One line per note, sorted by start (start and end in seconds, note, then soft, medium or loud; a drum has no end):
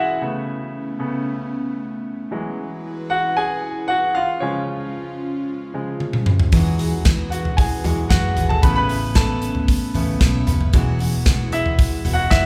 0.00 0.19 E3 medium
0.00 0.24 E3 medium
0.00 0.23 F#3 soft
0.00 0.23 G#3 medium
0.00 0.19 E4 medium
0.00 1.50 E4 medium
0.00 0.19 F#4 medium
0.00 0.24 F#4 medium
0.00 0.19 G#4 medium
0.00 0.23 G#4 medium
0.00 0.19 B4 medium
0.00 1.49 E5 loud
0.00 0.23 F#5 loud
0.00 0.23 G#5 loud
0.20 0.98 C#3 medium
0.20 2.29 A3 medium
0.20 0.98 A3 medium
0.20 2.29 B3 medium
0.20 0.98 B3 medium
0.20 2.29 C#4 medium
0.99 1.23 C#3 medium
0.99 1.24 A3 soft
0.99 1.24 B3 medium
2.31 4.14 E3 medium
2.31 4.12 E3 medium
2.31 4.12 F#3 medium
2.31 4.12 G#3 medium
2.31 4.14 E4 medium
2.31 4.14 F#4 medium
2.31 4.14 G#4 medium
2.31 4.14 B4 loud
3.10 3.17 F#4 medium
3.10 3.16 F#5 loud
3.37 3.86 G#4 medium
3.37 3.91 G#5 loud
3.88 4.14 F#4 medium
3.88 4.16 F#5 loud
4.15 6.50 G#3 medium
4.15 6.50 C#4 medium
4.15 6.50 F4 loud
4.15 4.41 F4 medium
4.15 4.42 F5 loud
4.40 5.72 C#3 medium
4.40 5.72 F3 medium
4.40 5.73 G#3 medium
4.40 5.17 C#4 medium
4.40 5.16 C#5 medium
5.74 5.97 C#3 soft
5.74 5.97 F3 soft
5.74 5.98 G#3 medium
6.00 high tom medium
6.13 mid tom medium
6.26 mid tom loud
6.40 floor tom loud
6.52 7.80 E2 loud
6.52 6.79 E3 medium
6.52 7.82 E3 medium
6.52 8.62 E3 medium
6.52 7.83 F#3 medium
6.52 7.83 G#3 medium
6.52 6.79 B3 medium
6.52 8.62 E4 medium
6.52 6.78 F#4 medium
6.52 8.62 F#4 medium
6.52 6.77 G#4 medium
6.52 8.62 G#4 medium
6.52 8.61 B4 loud
6.52 kick loud
6.52 open hi-hat loud
6.79 7.04 B3 medium
6.79 7.05 F#4 medium
6.79 7.05 G#4 medium
6.79 hi-hat pedal medium
6.79 open hi-hat medium
7.05 7.88 E3 medium
7.05 7.86 B3 medium
7.05 7.84 F#4 medium
7.05 7.83 G#4 medium
7.05 kick loud
7.05 snare loud
7.05 hi-hat pedal medium
7.05 open hi-hat loud
7.30 7.57 F#4 medium
7.30 7.58 F#5 medium
7.30 hi-hat pedal medium
7.30 open hi-hat medium
7.45 floor tom medium
7.57 8.07 G#4 medium
7.57 8.06 G#5 medium
7.57 kick loud
7.57 hi-hat pedal medium
7.57 open hi-hat medium
7.84 8.09 E2 loud
7.84 8.08 E3 medium
7.84 8.08 F#3 soft
7.84 8.08 G#3 medium
7.84 8.10 B3 soft
7.84 8.10 F#4 medium
7.84 8.10 G#4 medium
7.84 floor tom medium
7.84 hi-hat pedal medium
7.84 open hi-hat medium
8.09 8.35 F#2 medium
8.09 8.37 E3 medium
8.09 8.37 B3 medium
8.09 8.48 F#4 medium
8.09 8.36 F#4 medium
8.09 8.35 G#4 medium
8.09 8.51 F#5 loud
8.09 kick loud
8.09 snare loud
8.09 hi-hat pedal medium
8.09 open hi-hat medium
8.36 8.61 G#1 medium
8.36 8.63 B3 medium
8.36 8.64 F#4 medium
8.36 8.63 G#4 medium
8.36 floor tom medium
8.36 hi-hat pedal medium
8.36 open hi-hat medium
8.49 8.63 A4 medium
8.49 8.63 A5 loud
8.49 floor tom medium
8.62 9.91 A1 loud
8.62 9.38 C#3 medium
8.62 10.71 A3 medium
8.62 8.89 A3 medium
8.62 9.38 A3 soft
8.62 10.72 B3 medium
8.62 9.38 B3 medium
8.62 10.72 C#4 loud
8.62 8.90 C#4 medium
8.62 8.89 E4 loud
8.62 8.76 B4 medium
8.62 8.88 B4 loud
8.62 8.74 B5 loud
8.62 kick loud
8.62 hi-hat pedal medium
8.62 open hi-hat loud
8.76 9.14 B4 medium
8.76 9.17 B5 loud
8.89 9.15 C#4 soft
8.89 9.15 E4 medium
8.89 9.16 B4 medium
8.89 hi-hat pedal medium
8.89 open hi-hat medium
9.15 9.94 A3 medium
9.15 9.95 C#4 medium
9.15 9.95 E4 medium
9.15 9.66 A4 medium
9.15 9.94 B4 medium
9.15 9.65 A5 loud
9.15 kick loud
9.15 snare loud
9.15 hi-hat pedal medium
9.15 open hi-hat medium
9.42 hi-hat pedal medium
9.42 open hi-hat medium
9.55 floor tom medium
9.68 kick loud
9.68 hi-hat pedal medium
9.68 open hi-hat loud
9.94 10.19 A1 loud
9.94 10.18 C#3 soft
9.94 10.19 A3 soft
9.94 10.19 B3 medium
9.94 10.20 C#4 soft
9.94 10.21 E4 medium
9.94 10.21 B4 medium
9.94 floor tom medium
9.94 hi-hat pedal medium
9.94 open hi-hat medium
10.20 10.49 B1 loud
10.20 10.47 A3 medium
10.20 10.48 C#4 medium
10.20 10.47 E4 medium
10.20 10.46 B4 medium
10.20 kick loud
10.20 snare loud
10.20 hi-hat pedal medium
10.20 open hi-hat medium
10.47 10.72 F#1 medium
10.47 10.73 C#4 medium
10.47 10.73 E4 medium
10.47 10.73 B4 medium
10.47 floor tom medium
10.47 hi-hat pedal medium
10.47 open hi-hat medium
10.61 floor tom medium
10.73 12.01 E1 loud
10.73 12.46 E3 medium
10.73 11.00 E3 medium
10.73 12.46 E3 medium
10.73 12.46 F#3 medium
10.73 11.00 G#3 medium
10.73 12.46 G#3 medium
10.73 11.00 B3 medium
10.73 12.46 E4 medium
10.73 10.99 E4 medium
10.73 12.46 F#4 medium
10.73 10.98 F#4 loud
10.73 12.46 G#4 medium
10.73 12.46 B4 loud
10.73 kick loud
10.73 hi-hat pedal medium
10.73 open hi-hat loud
10.99 11.25 B3 soft
10.99 11.26 E4 medium
10.99 11.26 F#4 medium
10.99 hi-hat pedal medium
10.99 open hi-hat medium
11.25 12.07 G#3 medium
11.25 12.05 B3 medium
11.25 12.04 E4 medium
11.25 12.03 F#4 medium
11.25 kick loud
11.25 snare loud
11.25 hi-hat pedal medium
11.25 open hi-hat medium
11.52 12.02 E4 medium
11.52 12.02 E5 loud
11.52 hi-hat pedal medium
11.52 open hi-hat medium
11.66 floor tom medium
11.78 kick loud
11.78 hi-hat pedal medium
11.78 open hi-hat medium
12.04 12.29 E1 medium
12.04 12.30 B3 medium
12.04 12.31 E4 medium
12.04 12.31 F#4 medium
12.04 floor tom medium
12.04 hi-hat pedal medium
12.04 open hi-hat medium
12.13 12.20 F#4 medium
12.13 12.18 F#5 loud
12.31 12.46 F#1 loud
12.31 12.46 G#3 medium
12.31 12.46 B3 medium
12.31 12.46 E4 medium
12.31 12.46 F#4 medium
12.31 12.46 E5 loud
12.31 kick loud
12.31 snare loud
12.31 hi-hat pedal medium
12.31 open hi-hat medium